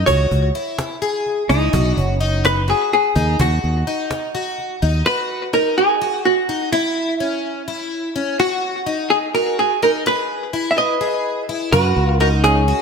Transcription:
0.06 C#2 F#4 C#5, cajon bass
0.31 C#2, cajon bass
0.55 E4, cajon slap
0.79 cajon slap
1.02 G#4, cajon slap
1.26 cajon slap
1.49 C#2 D#4 E4, cajon bass
1.73 B1 F#4, cajon bass
1.97 F#1 C#4, cajon bass
2.21 D#4, cajon slap
2.45 B4, cajon slap
2.68 F#4 G#4, cajon slap
2.92 G#4, cajon slap
3.16 D#2 D#4, cajon bass
3.39 D#2 F#4, cajon bass
3.63 D#2, cajon slap
3.87 D#4, cajon slap
4.11 cajon slap
4.35 F#4, cajon slap
4.58 cajon slap
4.82 D#2 D#4, cajon slap
5.06 F#4 B4
5.53 D#4 A#4
5.78 G#4
6.01 F#4
6.25 F#4
6.49 D#4
6.72 E4
7.20 C#4
7.68 E4
8.16 C#4
8.40 F#4
8.87 D#4
9.10 G#4
9.35 F#4 A#4
9.59 G#4
9.82 D#4 A#4
10.06 G#4 B4
10.53 E4
10.71 E5
10.77 B4 D#5
11.01 G#4
11.49 E4
11.72 F#2 F#4 B4, cajon bass
11.97 C#2, cajon slap
12.06 F4 A#4
12.20 D#4 F#4 A#4
12.44 C#4 G#4, cajon slap
12.68 F#4, cajon slap

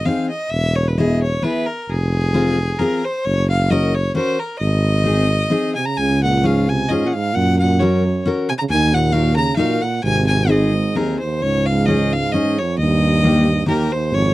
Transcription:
0.05 C4 D#4 G#4 F5
0.30 D#5
0.50 E1 E5
0.75 C#5
0.88 B4
0.98 B3 E4 G#4 D#5
1.22 C#5
1.42 B3 E4 G#4 B4
1.66 A#4
1.82 A#4
1.89 F1 G#4
2.34 C4 F4 G#4
2.79 C4 F4 G#4 A#4
3.05 C5
3.25 F#1 C#5
3.50 F5
3.70 C#4 F#4 A#4 D#5
3.95 C#5
4.15 C#4 F#4 A#4 C5
4.39 A#4
4.59 G#1 D#5
5.04 C4 D#4 G#4
5.50 C4 D#4 G#4
5.75 C3 G#5
5.86 C#3 A#5
5.97 C#2 C#3 G#5
6.23 A#2 F#5
6.43 G#2 C#4 F4 G#4 F5
6.69 C3 G#5
6.89 G#2 C#4 F4 G#4 D#5
7.06 A#2 F#5
7.13 G#2 F5
7.33 F#2 A#2 F#5
7.59 A#2 F#5
7.79 F#2 C#4 F#4 A#4 C#5
8.26 C#4 F#4 A#4
8.49 C3 G#5
8.58 C#3 A#5
8.69 D#2 D#3 G#5
8.93 A#2 F#5
9.12 A#2 D#4 F#4 A#4 F5
9.35 C#3 A#5
9.56 A#2 D#4 F#4 A#4 F5
9.80 A#2 F#5
10.04 G#1 C3 G#5
10.27 C3 G#5
10.48 G#2 C4 D#4 G#4 D#5
10.95 D#2 C4 D#4 G#4 A#4
11.19 D#2 C5
11.42 C#2 G#2 C#5
11.66 G#2 F5
11.86 C#4 D#4 D#5
11.90 G#2 G#4
12.12 F5
12.18 G#2
12.32 C#4 D#4 G#4 D#5
12.39 G#2
12.58 F2 C#5
12.78 D#2 G2 D#5
13.24 A#3 D#4 G4
13.66 D#2 A#3 D#4 G4 A#4
13.92 D#2 C5
14.12 G#1 F2 C#5

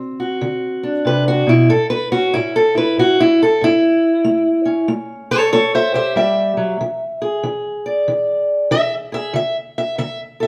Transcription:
Already playing: D3 C4
0.20 F#4
0.41 D3
0.83 D4
1.05 C3 B4
1.28 F#4
1.47 B2 E4
1.69 A2 A4
1.90 B4
2.12 C#4 F#4
2.34 A2 E4
2.56 A4
2.75 E4 B4
2.97 A2 F#4
3.20 E4
3.43 A4
3.61 A2 E4
4.25 A3
4.65 C#4
4.88 A3
5.31 A4 C#5
5.53 A3 A4 C#5
5.75 C5 E5
5.94 G4 C5 E5
6.16 G3 E5
6.57 F#3
6.81 E3
7.22 G#4
7.43 E3
7.86 D5
8.08 E3
8.71 E3 E5
9.12 G#4 E5
9.34 D3 E5
9.78 E5
9.98 D3 E5
10.40 A4 E5

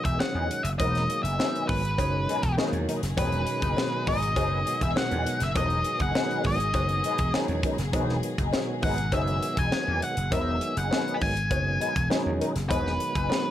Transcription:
Already playing: B2 D#3 F#4 G#4
0.05 E1 F#3 B3 D#4 G#4 E5, kick, closed hi-hat
0.19 D#3 F#3 G#3 C#4 F#5, snare, cowbell
0.35 E2 F#3 B3 D#4 G#4
0.50 muted clean electric guitar stroke, closed hi-hat
0.63 F#1 E5, muted clean electric guitar stroke, closed hi-hat
0.79 E1 D#3 F#3 G#3 A#3 B3 D#4 A#4 D#5, kick, closed hi-hat, cowbell
0.95 snare, closed hi-hat
1.10 muted clean electric guitar stroke, closed hi-hat
1.23 F#1 F#3 B3 D#4 G#4 E5, closed hi-hat
1.38 D#3 F#3 G#3 B3 D#4 G#4, snare, cowbell
1.55 closed hi-hat
1.68 G#1 B4, muted clean electric guitar stroke, kick, open hi-hat
1.84 muted clean electric guitar stroke, closed hi-hat
1.98 F#1 D#3 F#3 G#3 C#4, muted clean electric guitar stroke, kick, closed hi-hat, cowbell
2.14 muted clean electric guitar stroke
2.29 F#3 B3 D#4 G#4, closed hi-hat
2.43 E1, muted clean electric guitar stroke, kick, closed hi-hat
2.57 D#3 F#3 G#3 A#3 B3 D#4 G#4, snare, cowbell
2.73 E2, muted clean electric guitar stroke, closed hi-hat
2.88 F#3 B3 D#4 A#4, closed hi-hat
3.03 F#1, muted clean electric guitar stroke, snare, closed hi-hat
3.17 E1 D#3 F#3 G#3 B3 C#4 D#4 G#4 B4, kick, closed hi-hat, cowbell
3.32 closed hi-hat
3.47 muted clean electric guitar stroke, closed hi-hat
3.62 F#1 F#3 B3 D#4 G#4, kick, closed hi-hat
3.77 D#3 F#3 G#3 B3, snare, cowbell
3.92 muted clean electric guitar stroke
4.06 G#1 F#3 B3 D#4 G#4 D#5, kick, open hi-hat
4.21 muted clean electric guitar stroke, closed hi-hat
4.36 F#1 D#3 F#3 G#3 B3 D#4 G#4, kick, closed hi-hat, cowbell
4.66 muted clean electric guitar stroke, closed hi-hat
4.81 E1 F#3 B3 D#4 G#4 E5, kick, closed hi-hat
4.96 D#3 F#3 G#3 B3 F#5, muted clean electric guitar stroke, snare, cowbell
5.10 E2 F#3 B3 D#4 G#4, closed hi-hat
5.26 closed hi-hat
5.40 F#1 E5, muted clean electric guitar stroke, snare, closed hi-hat
5.55 E1 D#3 F#3 G#3 B3 D#4 A#4 D#5, kick, closed hi-hat, cowbell
5.70 closed hi-hat
5.84 muted clean electric guitar stroke, closed hi-hat
6.00 F#1 F#3 B3 D#4 G#4 F#5, kick, closed hi-hat
6.15 D#3 F#3 G#3 B3 D#4 G#4, snare, cowbell
6.31 closed hi-hat
6.44 G#1 D#5, kick, open hi-hat
6.60 muted clean electric guitar stroke, closed hi-hat
6.74 F#1 D#3 F#3 G#3 B3, muted clean electric guitar stroke, kick, closed hi-hat, cowbell
6.89 muted clean electric guitar stroke, closed hi-hat
7.04 F#3 B3 D#4 G#4, closed hi-hat
7.18 E1, muted clean electric guitar stroke, kick, closed hi-hat
7.33 D#3 F#3 G#3 B3 C#4 D#4 G#4, snare, cowbell
7.48 E2, muted clean electric guitar stroke, closed hi-hat
7.63 F#3 B3 D#4 A#4, kick, closed hi-hat
7.78 F#1, muted clean electric guitar stroke, snare, closed hi-hat
7.92 E1 D#3 F#3 G#3 B3 D#4 G#4, kick, closed hi-hat, cowbell
8.09 snare
8.23 muted clean electric guitar stroke, closed hi-hat
8.38 F#1 F#3 B3 D#4 G#4, kick, closed hi-hat
8.52 D#3 F#3 G#3 A#3, snare, cowbell
8.61 B3
8.70 muted clean electric guitar stroke
8.83 G#1 F#3 B3 D#4 G#4 F#5, kick, open hi-hat
8.98 muted clean electric guitar stroke, closed hi-hat
9.12 F#1 D#3 F#3 G#3 B3 D#4 G#4 E5, kick, closed hi-hat, cowbell
9.27 closed hi-hat
9.43 muted clean electric guitar stroke, closed hi-hat
9.57 E1 F#3 B3 D#4 G#4 G#5, kick, closed hi-hat
9.71 D#3 F#3 G#3 B3, snare, cowbell
9.88 E2 F#3 B3 D#4 G#4
10.02 F#5, closed hi-hat
10.17 F#1, muted clean electric guitar stroke, closed hi-hat
10.31 E1 D#3 F#3 G#3 B3 D#4 A#4 E5, kick, closed hi-hat, cowbell
10.61 muted clean electric guitar stroke, closed hi-hat
10.77 F#1 F#3 B3 D#4 G#4 F#5, closed hi-hat
10.90 D#3 F#3 G#3 B3 D#4 G#4, snare, cowbell
11.08 closed hi-hat
11.14 B5
11.21 G#1 G#5, muted clean electric guitar stroke, kick, open hi-hat
11.35 muted clean electric guitar stroke, closed hi-hat
11.50 F#1 D#3 F#3 G#3 B3, kick, closed hi-hat, cowbell
11.66 muted clean electric guitar stroke
11.80 F#3 B3 D#4 G#4, closed hi-hat
11.96 E1, kick, closed hi-hat
12.09 D#3 F#3 G#3 B3 C#4 D#4 G#4, snare, cowbell
12.25 E2, muted clean electric guitar stroke
12.40 F#3 B3 D#4 A#4, closed hi-hat
12.54 F#1, muted clean electric guitar stroke, snare, closed hi-hat
12.69 E1 D#3 F#3 G#3 B3 D#4 G#4 B4, kick, closed hi-hat, cowbell
12.87 snare
13.00 muted clean electric guitar stroke, closed hi-hat
13.15 F#1 F#3 B3 D#4 G#4, kick, closed hi-hat
13.29 D#3 F#3 G#3 B3, snare, cowbell
13.45 muted clean electric guitar stroke

